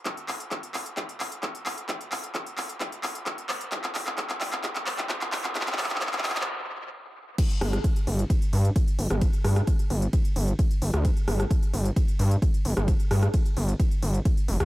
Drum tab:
CC |--------------------------------|--------------------------------|--------------------------------|--------------------------------|
RD |--------------------------------|--------------------------------|--------------------------------|--------------------------------|
HH |x-x-o-x-x-x-o-x-x-x-o-x-x-x-o-x-|x-x-o-x-x-x-o-x-x-x-o-x-x-x-o-x-|x-x-o-x-x-x-o-x-x-x-o-x-x-x-o-x-|x-x-o-x-x-x-o-x-----------------|
CP |x---x---x---x---x---x---x---x---|x---x---x---x---x---x---x---x---|x-x-x-x-x-x-x-x-x-x-x-x-x-x-x-x-|xxxxxxxxxxxxxxxx----------------|
SD |--------------------------------|--------------------------------|--------------------------------|--------------------------------|
BD |o-------o-------o-------o-------|o-------o-------o-------o-------|o-------o-------o-------o-------|o-------o-----------------------|

CC |x-------------------------------|--------------------------------|--------------------------------|--------------------------------|
RD |x-------x-------x-------x-------|x-------x-------x-------x-------|x-------x-------x-------x-------|x-------x-------x-------x-------|
HH |x-x-o-x-x-x-o-x-x-x-o-x-x-x-o-x-|x-x-o-x-x-x-o-x-x-x-o-x-x-x-o-x-|x-x-o-x-x-x-o-x-x-x-o-x-x-x-o---|x-x-o-x-x-x-o-x-x-x-o-x-x-x-o-x-|
CP |--------------------------------|--------------------------------|--------------------------------|--------------------------------|
SD |----r-r-----------------------r-|----r-r-----------------------r-|----r-r-----------------------r-|----r-r-----------------------r-|
BD |o-------o-------o-------o-------|o-------o-------o-------o-------|o-------o-------o-------o-------|o-------o-------o-------o-------|